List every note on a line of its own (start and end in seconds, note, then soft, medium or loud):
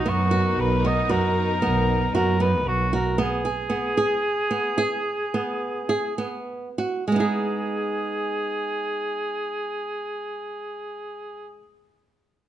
0.00 3.14 B3 medium
0.00 3.14 D#4 medium
0.00 3.14 A#4 medium
0.06 0.53 F#2 medium
0.06 0.28 B3 medium
0.06 0.61 F#4 loud
0.31 0.75 F#4 medium
0.58 1.05 B1 loud
0.58 0.88 B4 loud
0.85 1.06 B3 medium
0.85 1.12 D#5 loud
1.09 1.34 F#2 medium
1.09 1.53 F#4 medium
1.09 2.15 A#4 loud
1.62 2.09 B1 medium
1.62 2.06 B3 medium
2.14 2.67 F#2 loud
2.14 2.36 F#4 medium
2.14 2.43 A#4 loud
2.40 2.84 B3 medium
2.40 2.69 B4 loud
2.65 3.13 B1 medium
2.65 2.93 F#4 loud
2.93 3.14 F#4 medium
2.93 3.18 A#4 medium
3.18 3.40 B3 medium
3.18 6.45 G#4 loud
3.45 3.67 G#4 medium
3.70 3.92 B3 medium
3.97 4.42 G#4 medium
4.51 4.73 B3 medium
4.78 5.24 G#4 medium
5.34 5.81 B3 medium
5.89 6.13 G#4 medium
6.18 6.68 B3 medium
6.78 7.03 F#4 medium
7.08 11.62 G#3 medium
7.08 11.62 G#4 medium
7.12 11.66 B3 medium
7.12 11.70 D#4 medium
7.20 11.74 G#4 medium